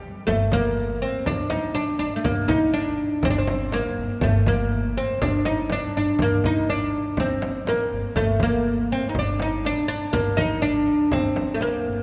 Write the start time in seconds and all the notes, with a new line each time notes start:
0.27 G1 A3, frame drum
0.52 A#3, frame drum
1.02 C4
1.26 G1 D4, frame drum
1.50 D#4, frame drum
1.75 D4, frame drum
1.99 G1 D4
2.16 A3
2.24 G1 A#3, frame drum
2.48 D#4, frame drum
2.74 D4
3.23 G1 C4, frame drum
3.30 D4
3.38 C4
3.48 frame drum
3.72 A#3, frame drum
3.98 G1
4.21 G1 A3, frame drum
4.46 A#3, frame drum
4.97 C4
5.21 G1 D4, frame drum
5.45 D#4, frame drum
5.70 D4, frame drum
5.95 G1 D4
6.19 G1 A#3, frame drum
6.44 D#4, frame drum
6.70 D4
7.17 G1 C4, frame drum
7.42 frame drum
7.67 A#3, frame drum
7.92 G1
8.16 G1 A3, frame drum
8.40 A#3, frame drum
8.92 C4
9.09 D#4
9.15 G1, frame drum
9.19 D4
9.40 D#4, frame drum
9.65 D4, frame drum
9.88 G1 D4
10.13 G1 A#3, frame drum
10.37 D#4, frame drum
10.62 D4
11.12 G1 C4, frame drum
11.36 frame drum
11.54 A3
11.61 A#3, frame drum
11.87 G1